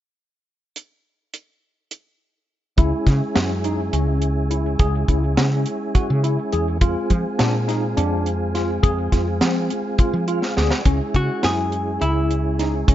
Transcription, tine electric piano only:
2.78 3.07 E4 medium
3.35 3.50 C#4 medium
3.65 3.79 D#4 medium
3.93 4.22 C#4 medium
4.51 4.65 E4 medium
4.80 4.94 G#4 medium
5.09 5.23 E4 medium
5.38 5.67 C#4 medium
5.95 6.09 F#4 medium
6.24 6.38 E4 medium
6.53 6.67 G#4 medium
6.81 7.11 F4 medium
7.39 7.53 D4 medium
7.68 7.83 D#4 medium
7.97 8.26 D4 medium
8.55 8.69 F4 medium
8.83 8.98 G#4 medium
9.12 9.27 F4 medium
9.41 9.70 C4 medium
9.99 10.14 F4 medium
10.28 10.43 F4 medium
10.57 10.72 G#4 medium
10.86 11.00 C#4 medium
11.15 11.29 C#4 medium
11.44 11.73 E4 medium
12.01 12.30 E4 medium
12.59 12.74 D#4 medium
12.88 12.95 C#4 medium

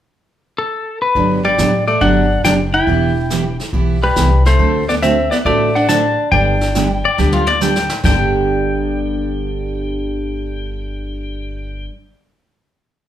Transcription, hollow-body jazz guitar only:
1.45 1.85 G3 medium
1.88 2.01 A3 medium
2.01 2.41 D4 medium
2.45 2.53 D4 medium
2.74 3.56 E4 medium
4.03 4.43 G3 medium
4.47 4.86 A3 medium
4.89 4.94 B3 medium
5.03 5.30 C4 medium
5.32 5.37 B3 medium
5.46 5.73 A3 medium
5.76 5.88 D4 medium
5.89 6.29 D4 medium
6.33 7.58 D4 medium

